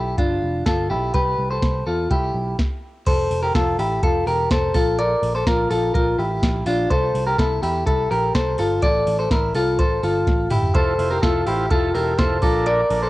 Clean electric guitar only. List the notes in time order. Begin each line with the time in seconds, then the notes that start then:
Already playing: E4 G4
0.18 D4 F4
0.66 F4 A4
0.90 E4 G4
1.14 G4 B4
1.51 A4 C5
1.87 F4 A4
2.11 E4 G4
3.07 A4 C5
3.43 G4 A#4
3.55 F4 A4
3.79 E4 G4
4.03 F4 A4
4.27 G4 A#4
4.51 A4 C5
4.75 F4 A4
4.99 A#4 D5
5.35 A4 C5
5.47 F4 A#4
5.71 F4 A4
5.94 F4 A#4
6.19 E4 G4
6.67 D4 F4
6.90 A4 C5
7.27 G4 A#4
7.38 E4 A4
7.63 E4 G4
7.86 E4 A4
8.11 G4 A#4
8.35 A4 C5
8.59 F4 A4
8.83 A4 D5
9.19 A4 C5
9.31 E4 A#4
9.55 F4 A4
9.79 A4 C5
10.03 F4 A4
10.51 E4 G4
10.75 A4 C5
11.11 G4 A#4
11.23 F4 A4
11.47 E4 G4
11.71 F4 A4
11.95 G4 A#4
12.19 A4 C5
12.43 F4 A4
12.66 A#4 D5
13.03 A4 C5